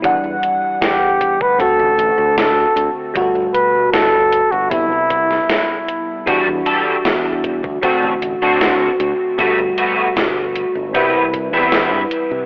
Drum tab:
HH |x-x-x-x-x-x-x-x-|x-x-x-x-x-x-x-x-|x-x-x-x-x-x-x-x-|x-x-x-x-x-x-x-x-|
SD |----o-------o---|----o------oo---|----o-------o---|----o------oo---|
BD |o-----ooo-------|o-------o-o-----|o-----ooo-------|o-------o-o-----|